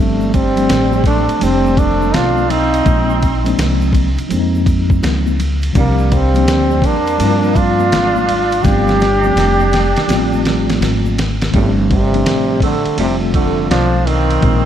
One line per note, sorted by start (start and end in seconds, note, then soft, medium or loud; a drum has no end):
0.00 0.66 G1 loud
0.00 0.36 F3 medium
0.00 0.33 G3 medium
0.00 0.36 G3 medium
0.00 0.33 A3 medium
0.00 0.37 A3 medium
0.00 0.37 C4 medium
0.00 0.37 D4 medium
0.21 shaker soft
0.33 1.02 G3 medium
0.33 1.02 C4 medium
0.33 kick medium
0.33 ride medium
0.33 shaker soft
0.55 1.18 F3 medium
0.55 1.18 G3 medium
0.55 1.19 A3 medium
0.55 1.19 C4 medium
0.55 1.20 D4 medium
0.55 ride soft
0.55 shaker soft
0.69 1.26 A1 medium
0.69 snare loud
0.69 hi-hat pedal medium
0.69 ride medium
0.69 shaker medium
0.93 high conga medium
0.93 shaker soft
1.04 1.43 A3 medium
1.04 1.45 D4 medium
1.04 kick medium
1.04 ride medium
1.04 high conga soft
1.04 low conga medium
1.04 shaker soft
1.29 muted upright bass stroke soft
1.29 ride soft
1.29 shaker soft
1.39 2.10 F1 medium
1.39 2.45 F3 medium
1.39 2.46 G3 medium
1.39 1.80 G3 medium
1.39 2.46 A3 medium
1.39 2.47 C4 medium
1.39 1.80 C4 loud
1.39 2.47 D4 medium
1.39 ride medium
1.39 shaker medium
1.66 high conga soft
1.66 shaker soft
1.77 2.16 A3 medium
1.77 2.17 D4 medium
1.77 kick medium
1.77 ride medium
1.77 shaker soft
2.02 high conga medium
2.02 shaker soft
2.14 2.82 B1 medium
2.14 2.52 D4 medium
2.14 2.53 F4 loud
2.14 snare loud
2.14 hi-hat pedal soft
2.14 ride medium
2.14 shaker medium
2.37 high conga medium
2.37 shaker soft
2.50 3.59 C4 medium
2.50 3.59 D#4 medium
2.50 ride medium
2.50 low conga medium
2.50 shaker soft
2.74 ride soft
2.74 shaker soft
2.85 3.55 A#1 medium
2.85 3.25 F3 medium
2.85 3.25 G#3 medium
2.85 3.26 A#3 medium
2.85 3.26 C4 medium
2.85 3.27 D#4 medium
2.85 kick loud
2.85 ride medium
2.85 shaker medium
3.10 shaker soft
3.22 kick medium
3.22 ride medium
3.22 shaker soft
3.44 4.07 F3 medium
3.44 4.08 G#3 medium
3.44 4.08 A#3 medium
3.44 4.09 C4 medium
3.44 4.09 D4 medium
3.44 ride soft
3.44 shaker soft
3.58 4.15 C2 medium
3.58 snare loud
3.58 hi-hat pedal medium
3.58 ride medium
3.58 shaker medium
3.81 high conga medium
3.81 shaker soft
3.93 kick medium
3.93 ride medium
3.93 high conga soft
3.93 low conga medium
3.93 shaker soft
4.18 muted upright bass stroke soft
4.18 ride soft
4.18 shaker soft
4.29 4.99 F2 medium
4.29 5.35 F3 medium
4.29 5.35 G#3 medium
4.29 5.36 A#3 medium
4.29 5.36 C4 medium
4.29 4.40 D4 medium
4.29 ride medium
4.29 shaker medium
4.39 5.40 D#4 medium
4.55 high conga soft
4.55 shaker soft
4.66 kick medium
4.66 ride medium
4.66 shaker soft
4.90 kick medium
4.90 high conga medium
4.90 shaker soft
5.03 5.72 C#2 loud
5.03 snare loud
5.03 hi-hat pedal soft
5.03 ride medium
5.03 shaker medium
5.27 high conga medium
5.27 shaker soft
5.39 ride medium
5.39 low conga medium
5.39 shaker soft
5.62 ride soft
5.62 shaker soft
5.73 6.47 C2 loud
5.73 6.14 F3 medium
5.73 6.14 G3 medium
5.73 6.13 G3 medium
5.73 6.15 A#3 medium
5.73 6.15 C4 medium
5.73 6.16 D4 medium
5.73 kick loud
5.73 ride medium
5.73 shaker medium
5.78 6.16 A#3 medium
5.99 shaker soft
6.11 6.86 G3 medium
6.11 6.87 C4 medium
6.11 kick loud
6.11 ride medium
6.11 shaker soft
6.34 6.96 F3 medium
6.34 6.97 G3 medium
6.34 6.97 A#3 medium
6.34 6.98 C4 medium
6.34 6.98 D4 medium
6.34 ride soft
6.34 shaker soft
6.47 6.81 D2 medium
6.47 snare loud
6.47 hi-hat pedal medium
6.47 ride medium
6.47 shaker medium
6.71 high conga medium
6.71 shaker soft
6.82 7.17 E2 medium
6.82 7.58 A#3 medium
6.82 7.59 D4 loud
6.82 kick medium
6.82 ride medium
6.82 high conga soft
6.82 low conga medium
6.82 shaker soft
7.06 ride soft
7.06 shaker soft
7.18 7.88 G2 medium
7.18 8.24 F3 medium
7.18 8.24 G3 medium
7.18 8.25 A#3 medium
7.18 8.25 C4 medium
7.18 7.29 E4 medium
7.18 ride medium
7.18 shaker medium
7.28 8.29 F4 medium
7.44 high conga soft
7.44 shaker soft
7.55 8.65 D4 medium
7.55 8.66 F4 loud
7.55 kick medium
7.55 ride medium
7.55 shaker soft
7.79 high conga medium
7.79 shaker soft
7.92 8.61 G#1 medium
7.92 snare loud
7.92 hi-hat pedal soft
7.92 ride medium
7.92 shaker medium
8.16 high conga medium
8.16 shaker soft
8.28 ride medium
8.28 low conga medium
8.28 shaker soft
8.51 ride soft
8.51 shaker soft
8.63 9.33 G1 loud
8.63 9.03 F3 medium
8.63 9.04 G3 medium
8.63 9.04 A3 medium
8.63 9.04 C4 medium
8.63 10.82 D4 medium
8.63 9.05 D4 medium
8.63 10.81 G4 loud
8.63 kick loud
8.63 snare medium
8.63 ride medium
8.63 shaker medium
8.88 snare soft
8.88 shaker soft
9.00 snare medium
9.00 ride medium
9.00 shaker soft
9.22 9.85 F3 medium
9.22 9.86 G3 medium
9.22 9.86 A3 medium
9.22 9.87 C4 medium
9.22 9.87 D4 medium
9.22 shaker soft
9.36 9.93 F1 medium
9.36 snare medium
9.36 hi-hat pedal medium
9.36 ride medium
9.36 shaker medium
9.60 high conga medium
9.60 shaker soft
9.72 snare medium
9.72 ride medium
9.72 high conga soft
9.72 low conga medium
9.72 shaker soft
9.96 muted upright bass stroke soft
9.96 snare medium
9.96 ride soft
9.96 shaker soft
10.07 10.77 A1 medium
10.07 11.13 F3 medium
10.07 11.13 G3 medium
10.07 11.14 A3 medium
10.07 10.18 B3 medium
10.07 11.14 F4 medium
10.07 snare medium
10.07 ride medium
10.07 shaker medium
10.16 11.17 C4 medium
10.33 high conga soft
10.33 shaker soft
10.45 snare medium
10.45 ride medium
10.45 shaker soft
10.69 snare medium
10.69 ride soft
10.69 high conga medium
10.69 shaker soft
10.81 11.50 G#1 medium
10.81 snare medium
10.81 hi-hat pedal soft
10.81 ride medium
10.81 shaker medium
11.05 high conga medium
11.05 shaker soft
11.19 snare medium
11.19 ride medium
11.19 low conga medium
11.19 shaker soft
11.42 snare medium
11.42 ride soft
11.42 shaker soft
11.52 12.22 G1 loud
11.52 11.71 A2 medium
11.52 11.92 F3 medium
11.52 11.93 G3 medium
11.52 11.71 G3 medium
11.52 11.93 A3 medium
11.52 11.94 C4 medium
11.52 11.94 D4 medium
11.52 kick loud
11.52 ride medium
11.91 12.59 C3 medium
11.91 12.59 G3 medium
11.91 kick medium
11.91 ride medium
12.11 12.74 F3 medium
12.11 12.75 G3 medium
12.11 12.75 A3 medium
12.11 12.76 C4 medium
12.11 12.76 D4 medium
12.11 ride soft
12.26 12.82 A1 medium
12.26 snare loud
12.26 hi-hat pedal medium
12.26 ride medium
12.60 12.96 D3 medium
12.60 12.96 A3 medium
12.60 kick medium
12.60 ride medium
12.85 muted upright bass stroke soft
12.85 ride soft
12.97 13.67 F1 medium
12.97 13.16 C3 medium
12.97 14.02 F3 medium
12.97 14.03 G3 medium
12.97 13.15 G3 medium
12.97 14.03 A3 medium
12.97 14.03 C4 medium
12.97 14.04 F4 medium
12.97 ride medium
13.34 13.68 D3 medium
13.34 13.68 A3 medium
13.34 kick medium
13.34 ride medium
13.70 14.39 B1 medium
13.70 14.09 F3 loud
13.70 14.08 D4 medium
13.70 snare loud
13.70 hi-hat pedal soft
13.70 ride medium
14.07 14.65 D#3 loud
14.07 14.65 C4 medium
14.07 ride medium
14.30 ride soft
14.41 14.65 A#1 loud
14.41 14.65 F3 medium
14.41 14.65 G#3 medium
14.41 14.65 A#3 medium
14.41 14.65 C4 medium
14.41 14.65 D#4 medium
14.41 kick loud
14.41 ride medium